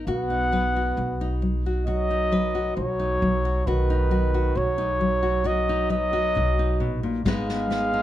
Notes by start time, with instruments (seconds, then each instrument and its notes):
Already playing: nylon-string guitar B3
0.06 upright bass B1, nylon-string guitar B2 F#4, french horn B3, flugelhorn F#5
0.30 nylon-string guitar D#4
0.52 nylon-string guitar F#3 B4
0.76 nylon-string guitar F#4
0.97 upright bass B1, nylon-string guitar B2
1.21 nylon-string guitar D#4
1.42 nylon-string guitar F#3
1.66 nylon-string guitar F#4
1.86 nylon-string guitar B2 F#4, french horn F#3, flugelhorn D#5
2.11 nylon-string guitar D#4
2.32 nylon-string guitar F#3 B4
2.55 nylon-string guitar F#4
2.77 upright bass B1, nylon-string guitar B2, french horn F#3, flugelhorn C#5
2.99 nylon-string guitar D#4
3.22 upright bass B1, nylon-string guitar F#3
3.45 nylon-string guitar F#4
3.67 upright bass B1, nylon-string guitar B2 F#4, french horn D#3, flugelhorn B4
3.90 nylon-string guitar D#4
4.11 nylon-string guitar F#3 F#4
4.34 nylon-string guitar F#4
4.55 upright bass B1, nylon-string guitar B2, french horn F#3, flugelhorn C#5
4.78 nylon-string guitar D#4
5.01 nylon-string guitar F#3
5.23 nylon-string guitar F#4
5.44 nylon-string guitar B2 F#4, french horn F#3, flugelhorn D#5
5.69 nylon-string guitar D#4
5.90 nylon-string guitar F#3 B4, french horn F#3, flugelhorn D#5
6.13 nylon-string guitar F#4
6.35 upright bass B1, nylon-string guitar B2
6.59 nylon-string guitar D#4
6.80 upright bass A#1, nylon-string guitar B2
7.03 nylon-string guitar A#2
7.25 upright bass G#1, nylon-string guitar G#2 G#3 B3 D#4 B4, french horn G#3, flugelhorn F5, kick, snare
7.49 nylon-string guitar B3, snare
7.70 nylon-string guitar G#3 B4, snare
7.94 nylon-string guitar D#4